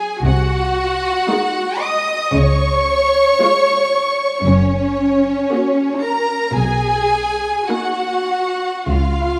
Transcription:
0.00 0.21 G#4 medium
0.00 0.24 G#5 medium
0.24 1.09 C2 medium
0.24 1.10 C3 medium
0.24 1.83 F#4 medium
0.24 1.80 F#5 medium
1.29 2.11 G#3 medium
1.29 2.11 D#4 medium
1.82 2.35 D#5 medium
1.82 2.36 D#6 medium
2.36 3.22 C#2 medium
2.36 3.22 C#3 medium
2.36 4.46 C#5 medium
2.36 4.46 C#6 medium
3.42 4.21 G#3 medium
3.42 4.21 F4 medium
4.45 5.31 F#1 medium
4.45 5.30 F#2 medium
4.45 6.00 C#4 medium
4.45 6.03 C#5 medium
5.50 6.31 A#3 soft
5.50 6.31 F#4 medium
6.03 6.56 A#4 medium
6.03 6.55 A#5 medium
6.56 7.47 B1 medium
6.56 7.48 B2 medium
6.56 7.69 G#4 medium
6.56 7.69 G#5 medium
7.68 8.60 A#3 soft
7.68 8.60 D#4 soft
7.68 8.87 F#4 medium
7.68 8.88 F#5 medium
8.89 9.39 C#2 medium
8.89 9.39 C#3 medium
8.89 9.39 F4 medium
8.89 9.39 F5 medium

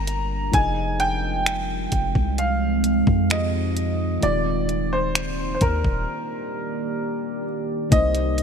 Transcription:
0.00 0.51 G1 loud
0.00 0.48 G3 medium
0.00 0.50 G3 medium
0.00 0.50 D4 medium
0.00 0.49 G4 medium
0.00 0.52 G4 medium
0.00 0.50 A#4 medium
0.00 0.53 A#4 medium
0.00 0.51 D5 medium
0.00 0.51 F5 medium
0.00 0.50 A#5 loud
0.07 closed hi-hat medium
0.51 1.88 F1 loud
0.51 3.25 F3 medium
0.51 4.19 F3 medium
0.51 4.19 G#3 medium
0.51 4.19 C4 medium
0.51 4.19 D#4 medium
0.51 3.27 D#4 medium
0.51 3.26 F4 medium
0.51 1.01 G#5 loud
0.51 kick loud
0.51 closed hi-hat medium
0.56 3.28 G#4 medium
0.56 3.28 D#5 medium
1.00 2.34 G5 loud
1.00 closed hi-hat medium
1.46 finger snap loud
1.46 closed hi-hat medium
1.92 2.14 F1 loud
1.92 kick medium
1.92 closed hi-hat medium
2.15 3.04 C2 medium
2.15 kick medium
2.38 3.27 F5 medium
2.38 closed hi-hat medium
2.84 closed hi-hat medium
3.07 4.19 F2 loud
3.07 kick medium
3.30 4.22 F3 soft
3.30 4.22 F4 soft
3.30 4.23 G4 soft
3.30 4.24 G#4 soft
3.30 4.26 D#5 medium
3.30 4.24 D#5 medium
3.30 finger snap loud
3.30 closed hi-hat medium
3.77 closed hi-hat medium
4.21 5.57 D#1 loud
4.21 7.87 D#3 medium
4.21 7.88 D#3 medium
4.21 7.88 A#3 medium
4.21 7.88 D#4 medium
4.21 7.88 F4 medium
4.21 7.88 G4 medium
4.21 7.88 D5 medium
4.21 4.94 D5 medium
4.21 closed hi-hat medium
4.25 7.89 G4 medium
4.25 7.90 D5 medium
4.69 closed hi-hat medium
4.93 5.53 C5 medium
5.15 finger snap loud
5.15 closed hi-hat medium
5.55 5.61 C5 medium
5.61 5.84 D#2 loud
5.61 7.42 A#4 medium
5.61 kick medium
5.61 closed hi-hat medium
5.84 6.07 D#1 loud
5.84 kick medium
7.90 8.43 C2 loud
7.90 8.43 C3 medium
7.90 8.43 C4 medium
7.90 8.43 D#4 medium
7.90 8.43 D#5 loud
7.90 kick loud
7.90 closed hi-hat medium
7.94 8.43 A#4 medium
7.94 8.43 C5 medium
8.15 closed hi-hat soft
8.38 closed hi-hat medium

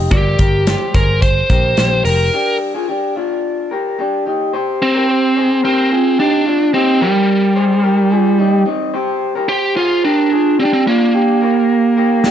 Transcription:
0.00 0.12 D#4 medium
0.00 0.12 G4 medium
0.11 0.35 G1 loud
0.11 0.97 G4 medium
0.11 0.38 A#4 medium
0.11 0.39 D5 medium
0.11 kick medium
0.11 closed hi-hat medium
0.39 0.75 G1 medium
0.39 0.67 G4 medium
0.39 0.67 A#4 medium
0.39 kick medium
0.39 closed hi-hat medium
0.67 0.95 G4 medium
0.67 0.94 C5 medium
0.67 snare loud
0.67 closed hi-hat medium
0.94 1.42 G1 medium
0.94 1.47 G#4 medium
0.94 1.20 A#4 medium
0.94 1.47 C5 medium
0.94 kick medium
0.94 closed hi-hat medium
1.22 2.04 C5 medium
1.22 kick medium
1.22 closed hi-hat medium
1.50 1.73 A#1 medium
1.50 1.77 G4 medium
1.50 1.77 A#4 medium
1.50 kick medium
1.50 closed hi-hat medium
1.77 2.01 A#1 medium
1.77 2.05 G4 medium
1.77 2.05 C5 medium
1.77 snare loud
1.77 closed hi-hat medium
2.05 2.29 F1 medium
2.05 2.32 G4 medium
2.05 2.56 A#4 medium
2.05 2.33 A#4 medium
2.05 open hi-hat medium
2.33 2.72 D4 medium
2.33 2.72 G4 medium
2.75 2.89 F4 medium
2.75 2.88 G#4 medium
2.89 3.16 D4 medium
2.89 3.16 G4 medium
3.16 3.68 D4 medium
3.16 3.68 F4 medium
3.71 3.98 G4 medium
3.71 3.99 A#4 medium
3.99 4.27 D4 medium
3.99 4.25 G4 medium
4.26 4.54 D#4 medium
4.26 4.53 G4 medium
4.53 4.93 G4 medium
4.53 4.92 C5 loud
4.82 5.60 C4 loud
4.95 5.08 G4 medium
4.95 5.08 A#4 medium
5.08 5.36 G4 medium
5.08 5.35 C5 medium
5.36 5.64 G#4 medium
5.36 5.63 C5 medium
5.64 6.19 C4 loud
5.64 5.91 G4 medium
5.64 5.91 A#4 medium
5.91 6.19 F4 medium
5.91 6.18 G#4 medium
6.19 6.70 D4 loud
6.19 6.47 D#4 medium
6.19 6.46 G4 medium
6.46 6.74 D4 medium
6.46 6.73 F4 medium
6.74 7.02 C4 loud
6.74 7.01 D#4 medium
6.74 7.00 G4 medium
7.01 8.62 G3 medium
7.01 7.53 G4 medium
7.01 7.53 A#4 medium
7.56 7.84 G#4 medium
7.56 7.83 C5 medium
7.83 8.10 G4 medium
7.83 8.11 A#4 medium
8.11 8.39 F4 medium
8.11 8.38 G#4 medium
8.39 8.65 D#4 medium
8.39 8.66 G4 medium
8.66 8.94 C4 medium
8.66 8.94 D#4 medium
8.94 9.33 G4 medium
8.94 9.32 C5 loud
9.35 9.48 G4 medium
9.35 9.48 A#4 medium
9.49 9.76 G4 loud
9.49 9.77 G4 medium
9.49 9.75 C5 medium
9.76 10.02 F4 loud
9.76 10.04 G#4 medium
9.76 10.03 C5 medium
10.04 10.55 D4 medium
10.04 10.31 G4 medium
10.04 10.31 A#4 medium
10.32 10.59 F4 medium
10.32 10.59 G#4 medium
10.59 10.65 C4 loud
10.59 10.86 D4 medium
10.59 10.86 G4 medium
10.65 10.72 D4 medium
10.73 10.87 C4 loud
10.87 12.31 A#3 medium
10.87 11.14 D4 medium
10.87 11.14 F4 medium
11.14 11.42 D4 medium
11.14 11.42 G4 loud
11.42 11.94 G4 medium
11.42 11.93 A#4 medium
11.97 12.23 G4 medium
11.97 12.24 A#4 medium
12.24 12.31 D4 medium
12.24 12.31 G4 medium
12.24 snare medium

